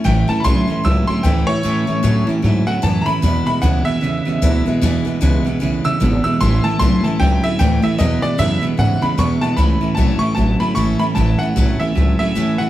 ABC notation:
X:1
M:4/4
L:1/8
Q:"Swing" 1/4=151
K:A
V:1 name="Upright piano"
=g a [b=c']2 e' c' g ^c- | c3 z2 f a [_b=b]- | [_b=b] b f e4 z | z4 z e' z e' |
=c' a c' a =g e g e | ^d =d e z f b c' a | b2 a c' a b c' b | a f2 e2 e2 f |]
V:2 name="Steel-string acoustic guitar"
[A,,E,A,CE] [A,CE] [A,,E,A,CE] [A,CE] [E,A,CE] [A,CE] [A,,E,A,CE] [A,CE] | [A,,E,A,CE] [A,CE] [A,,E,A,CE] [A,CE] [E,A,CE] [A,CE] [A,,E,A,CE] [A,CE] | [E,,B,,E,G,B,E] [E,G,B,E] [E,,B,,E,G,B,E] [E,G,B,E] [E,G,B,E] [E,G,B,E] [E,,B,,E,G,B,E] [E,G,B,E] | [E,,B,,E,G,B,E] [E,G,B,E] [E,,B,,E,G,B,E] [E,G,B,E] [E,G,B,E] [E,G,B,E] [E,,B,,E,G,B,E] [E,G,B,E] |
[A,,E,A,CE] [A,CE] [A,,E,A,CE] [A,CE] [E,A,CE] [A,CE] [A,,E,A,CE] [A,CE] | [E,,B,,E,G,B,E] [E,G,B,E] [E,,B,,E,G,B,E] [E,G,B,E] [E,G,B,E] [E,G,B,E] [E,,B,,E,G,B,E] [E,G,B,E] | [A,,E,A,CE] [A,CE] [A,,E,A,CE] [A,CE] [E,A,CE] [A,CE] [A,,E,A,CE] [A,CE] | [A,,E,A,CE] [A,CE] [A,,E,A,CE] [A,CE] [E,A,CE] [A,CE] [A,,E,A,CE] [A,CE] |]
V:3 name="Clean electric guitar" clef=bass
[A,,E,] [A,,E,] [A,,F,] [A,,E,] [A,,F,] [A,,F,] [A,,E,] [A,,E,] | [A,,E,] [A,,E,] [A,,F,] [A,,E,] [A,,F,] [A,,F,] [A,,E,] [A,,E,] | [E,,B,,] [E,,B,,] [E,,C,] [E,,B,,] [E,,C,] [E,,C,] [E,,B,,] [E,,B,,] | [E,,B,,] [E,,B,,] [E,,C,] [E,,B,,] [E,,C,] [E,,C,] [E,,B,,] [E,,B,,] |
[A,,E,] [A,,E,] [A,,F,] [A,,E,] [A,,F,] [A,,F,] [A,,E,] [A,,E,] | [E,,B,,] [E,,B,,] [E,,C,] [E,,B,,] [E,,C,] [E,,C,] [E,,B,,] [E,,B,,] | [A,,E,] [A,,E,] [A,,F,] [A,,E,] [A,,F,] [A,,F,] [A,,E,] [A,,E,] | [A,,E,] [A,,E,] [A,,F,] [A,,E,] [A,,F,] [A,,F,] [A,,E,] [A,,E,] |]
V:4 name="Upright bass" clef=bass
A,,, z B,,, z C,, z D,, z | E,, z A,, z G,, z F,, z | E,, z D,, z E,, z D,, z | E,, z C,, z B,,, z G,,, z |
A,,, z B,,, z C,, z D,, z | E,, z F,, z G,, z E,, z | C,, z B,,, z A,,, z G,,, z | A,,, z B,,, z C,, z E,, z |]